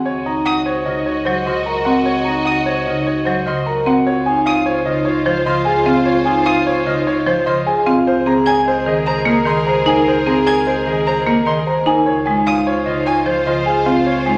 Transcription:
Already playing: marimba C4, grand piano F#5
0.05 double bass C#2, clarinet F#4, string section F#4 D#5, grand piano C#5
0.26 vibraphone D#4, clarinet F#4, grand piano A#5
0.45 clarinet F#4, grand piano F#5, violin D#6
0.66 clarinet F#4, vibraphone C5, grand piano C#5
0.86 marimba C#3, vibraphone D#4, clarinet F#4, grand piano D#5
1.06 clarinet F#4, grand piano C#5
1.25 marimba F#3, clarinet F#4, grand piano C5, vibraphone C5
1.46 marimba C#3, clarinet F#4, grand piano D#5, violin C6
1.66 clarinet F#4, vibraphone A#4, grand piano A#5
1.85 marimba C4, vibraphone F#4, clarinet F#4, grand piano F#5
2.05 clarinet F#4, grand piano C#5
2.25 vibraphone D#4, clarinet F#4, grand piano A#5
2.45 clarinet F#4, grand piano F#5, violin D#6
2.66 clarinet F#4, vibraphone C5, grand piano C#5
2.87 marimba C#3, vibraphone D#4, clarinet F#4, grand piano D#5
3.07 clarinet F#4, grand piano C#5
3.25 marimba F#3, clarinet F#4, grand piano C5, vibraphone C5
3.46 marimba C#3, clarinet F#4, grand piano D#5, violin C6
3.66 clarinet F#4, vibraphone A#4, grand piano A#5
3.86 marimba C4, vibraphone F#4, grand piano F#5
4.06 double bass C#2, string section F4 C5, clarinet F4, grand piano C#5
4.26 vibraphone D#4, clarinet F4, grand piano G#5
4.46 clarinet F4, grand piano F5, violin D#6
4.66 clarinet F4, vibraphone C5, grand piano C#5
4.86 marimba C#3, vibraphone D#4, clarinet F4, grand piano D#5
5.05 clarinet F4, grand piano C#5
5.26 marimba F3, clarinet F4, grand piano C5, vibraphone C5
5.46 marimba C#3, clarinet F4, grand piano D#5, violin C6
5.65 clarinet F4, vibraphone G#4, grand piano G#5
5.86 marimba C4, vibraphone F4, clarinet F4, grand piano F5
6.06 clarinet F4, grand piano C#5
6.25 vibraphone D#4, clarinet F4, grand piano G#5
6.46 clarinet F4, grand piano F5, violin D#6
6.66 clarinet F4, vibraphone C5, grand piano C#5
6.86 marimba C#3, vibraphone D#4, clarinet F4, grand piano D#5
7.07 clarinet F4, grand piano C#5
7.26 marimba F3, clarinet F4, vibraphone C5, grand piano C5
7.46 marimba C#3, clarinet F4, grand piano D#5, violin C6
7.66 clarinet F4, vibraphone G#4, grand piano G#5
7.86 marimba C4, vibraphone F4, grand piano F5
8.06 double bass C#2, string section G#4 A#4, clarinet G#4, grand piano C5
8.26 marimba C4, clarinet G#4, vibraphone G#4, grand piano A#5
8.46 clarinet G#4, grand piano G#5, violin G#6
8.66 clarinet G#4, grand piano C5, vibraphone D#5
8.86 marimba D#3, vibraphone G#4, clarinet G#4, grand piano D#5
9.06 clarinet G#4, grand piano C5, violin A#5
9.25 marimba A#3, clarinet G#4, grand piano A#4, vibraphone D#5
9.45 marimba D#3, clarinet G#4, grand piano D#5, violin C6
9.66 clarinet G#4, vibraphone C5, grand piano A#5
9.86 marimba D#4, clarinet G#4, vibraphone A#4, grand piano G#5
10.06 clarinet G#4, grand piano C5
10.26 marimba C4, vibraphone G#4, clarinet G#4, grand piano A#5
10.46 clarinet G#4, grand piano G#5, violin G#6
10.66 clarinet G#4, grand piano C5, vibraphone D#5
10.86 marimba D#3, vibraphone G#4, clarinet G#4, grand piano D#5
11.06 clarinet G#4, grand piano C5, violin A#5
11.27 marimba A#3, clarinet G#4, grand piano A#4, vibraphone D#5
11.46 marimba D#3, clarinet G#4, grand piano D#5, violin C6
11.66 clarinet G#4, vibraphone C5, grand piano A#5
11.86 marimba D#4, grand piano G#5
12.05 double bass C#2, string section F4 C5, clarinet F4, grand piano C#5
12.26 marimba G#3, vibraphone D#4, clarinet F4, grand piano G#5
12.47 clarinet F4, grand piano F5, violin D#6
12.67 clarinet F4, vibraphone C5, grand piano C#5
12.86 marimba C#3, vibraphone D#4, clarinet F4, grand piano D#5
13.06 clarinet F4, grand piano C#5, violin G#5
13.26 marimba F3, clarinet F4, vibraphone C5, grand piano C5
13.46 marimba C#3, clarinet F4, grand piano D#5, violin C6
13.66 clarinet F4, vibraphone G#4, grand piano G#5
13.86 marimba C4, clarinet F4, vibraphone F4, grand piano F5
14.06 clarinet F4, grand piano C#5
14.26 marimba G#3, vibraphone D#4, clarinet F4, grand piano G#5

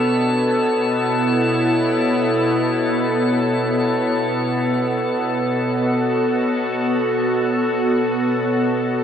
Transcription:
Already playing: ambient pad B2 B3 D4 A4 C#5, synth drone B3, synth texture A4 A5
0.61 ambient pad E4
1.06 ambient pad A4
5.21 ambient pad F#4

